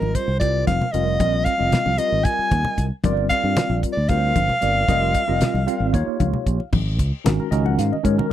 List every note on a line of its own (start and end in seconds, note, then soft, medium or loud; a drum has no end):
0.00 0.13 G#1 medium
0.00 0.27 G3 medium
0.00 0.27 C4 medium
0.00 0.28 F4 medium
0.00 0.16 A#4 medium
0.00 0.28 A#4 medium
0.00 0.28 D#5 medium
0.00 high conga medium
0.15 0.39 C5 medium
0.15 kick medium
0.15 closed hi-hat medium
0.28 0.63 C2 medium
0.40 0.84 G3 medium
0.40 0.84 C4 medium
0.40 0.84 F4 medium
0.40 0.85 A#4 medium
0.40 0.85 C5 medium
0.40 0.65 D5 medium
0.40 kick medium
0.40 closed hi-hat medium
0.67 0.79 F1 medium
0.67 0.94 F5 medium
0.67 kick medium
0.67 snare soft
0.67 closed hi-hat medium
0.67 high conga medium
0.67 low conga soft
0.81 low conga medium
0.92 1.17 F1 medium
0.92 1.15 G3 medium
0.92 1.16 C4 medium
0.92 1.16 F4 medium
0.92 1.16 A#4 medium
0.92 1.46 D#5 medium
0.92 1.16 F5 medium
0.92 closed hi-hat medium
1.19 1.44 A#1 medium
1.19 1.52 G3 medium
1.19 1.52 C4 medium
1.19 1.53 F4 medium
1.19 1.53 A#4 medium
1.19 1.53 D#5 medium
1.19 kick medium
1.19 closed hi-hat medium
1.19 high conga medium
1.19 low conga soft
1.34 low conga soft
1.45 2.00 F5 medium
1.45 kick medium
1.45 closed hi-hat medium
1.57 1.72 F1 medium
1.57 1.91 G3 medium
1.57 1.91 C4 medium
1.57 1.92 F4 medium
1.57 1.92 A#4 medium
1.57 1.92 D#5 medium
1.72 snare loud
1.72 closed hi-hat medium
1.72 low conga medium
1.86 1.98 C2 medium
1.86 high conga medium
1.97 2.85 G3 medium
1.97 2.86 C4 medium
1.97 2.86 F4 medium
1.97 2.86 A#4 medium
1.97 2.26 D#5 medium
1.97 2.86 D#5 medium
1.97 closed hi-hat medium
2.12 2.24 G#1 medium
2.24 2.84 G#5 loud
2.24 kick medium
2.24 closed hi-hat medium
2.39 muted fingered electric bass stroke soft
2.51 2.63 D#2 medium
2.51 kick medium
2.51 closed hi-hat medium
2.51 high conga medium
2.51 low conga soft
2.65 low conga medium
2.78 2.90 C2 medium
2.78 kick medium
2.78 closed hi-hat medium
3.04 3.28 G1 medium
3.04 3.26 G3 medium
3.04 3.26 C4 medium
3.04 3.26 F4 medium
3.04 3.26 A#4 medium
3.04 3.27 D5 loud
3.04 kick loud
3.04 closed hi-hat medium
3.04 high conga medium
3.04 low conga soft
3.17 low conga soft
3.29 3.96 G3 medium
3.29 3.96 C4 medium
3.29 3.96 F4 medium
3.29 3.96 A#4 medium
3.29 3.97 D5 medium
3.29 3.79 F5 medium
3.29 kick medium
3.29 closed hi-hat medium
3.44 3.55 G2 medium
3.57 snare loud
3.57 closed hi-hat medium
3.57 low conga medium
3.70 3.82 A#1 medium
3.83 kick medium
3.83 closed hi-hat medium
3.93 4.10 D5 medium
3.97 4.32 D2 medium
4.09 4.53 G3 medium
4.09 4.53 C4 medium
4.09 4.53 F4 medium
4.09 4.53 A#4 medium
4.09 4.53 C5 medium
4.09 6.20 F5 loud
4.09 kick medium
4.09 closed hi-hat medium
4.36 4.48 G1 medium
4.36 kick medium
4.36 closed hi-hat medium
4.36 high conga medium
4.36 low conga soft
4.49 low conga medium
4.61 4.86 G1 medium
4.61 4.83 G3 medium
4.61 4.84 C4 medium
4.61 4.84 F4 medium
4.61 4.84 A#4 medium
4.61 4.84 D5 medium
4.61 closed hi-hat medium
4.88 5.12 F1 medium
4.88 5.21 G3 medium
4.88 5.21 C4 medium
4.88 5.21 F4 medium
4.88 5.22 A#4 medium
4.88 5.22 D#5 medium
4.88 kick loud
4.88 closed hi-hat medium
4.88 high conga medium
5.15 kick medium
5.15 closed hi-hat medium
5.27 5.40 F1 medium
5.27 5.60 G3 medium
5.27 5.60 C4 medium
5.27 5.61 F4 medium
5.27 5.61 A#4 medium
5.27 5.61 D#5 medium
5.41 snare loud
5.41 closed hi-hat medium
5.41 low conga medium
5.54 5.66 C2 medium
5.54 high conga medium
5.67 5.93 G3 medium
5.67 5.93 C4 medium
5.67 5.92 F4 medium
5.67 5.94 A#4 medium
5.67 5.94 F5 medium
5.67 closed hi-hat medium
5.80 5.92 G#1 medium
5.93 6.06 D#2 medium
5.93 6.59 A#3 medium
5.93 6.59 D#4 medium
5.93 6.59 F4 medium
5.93 6.60 G4 medium
5.93 6.60 C#5 medium
5.93 kick medium
5.93 closed hi-hat medium
5.93 low conga soft
6.08 muted fingered electric bass stroke soft
6.20 6.32 C#2 medium
6.20 6.69 F5 medium
6.20 kick medium
6.20 closed hi-hat medium
6.20 high conga medium
6.20 low conga soft
6.34 low conga medium
6.46 6.58 A#1 medium
6.46 kick medium
6.46 closed hi-hat medium
6.60 low conga soft
6.73 6.99 G#1 medium
6.73 kick loud
6.73 crash medium
6.73 high conga medium
6.99 7.11 C#2 medium
6.99 kick medium
6.99 closed hi-hat medium
7.24 7.38 G#1 medium
7.24 7.47 D#3 medium
7.24 7.47 G#3 medium
7.24 7.47 C#4 medium
7.24 7.47 F#4 medium
7.24 7.38 A#4 medium
7.24 snare loud
7.24 closed hi-hat medium
7.24 low conga medium
7.40 7.51 A#4 medium
7.40 low conga soft
7.51 7.75 C#2 medium
7.51 7.95 D#3 medium
7.51 7.95 G#3 medium
7.51 7.96 C#4 medium
7.51 7.96 F#4 medium
7.51 7.96 A#4 medium
7.51 7.64 D#5 medium
7.51 closed hi-hat medium
7.66 7.78 F#5 medium
7.66 high conga medium
7.66 low conga soft
7.78 7.90 G#2 medium
7.78 7.92 F5 medium
7.78 snare soft
7.78 closed hi-hat medium
7.78 low conga soft
7.92 8.05 D#5 medium
7.92 muted fingered electric bass stroke soft
7.92 low conga soft
8.03 8.17 G#2 medium
8.03 8.26 D#3 medium
8.03 8.26 G#3 medium
8.03 8.26 C#4 medium
8.03 8.26 F#4 medium
8.03 8.17 A#4 medium
8.03 8.18 C#5 medium
8.03 kick medium
8.03 closed hi-hat medium
8.18 8.29 A#4 medium
8.18 low conga medium
8.29 8.33 D#3 medium
8.29 8.33 G#3 medium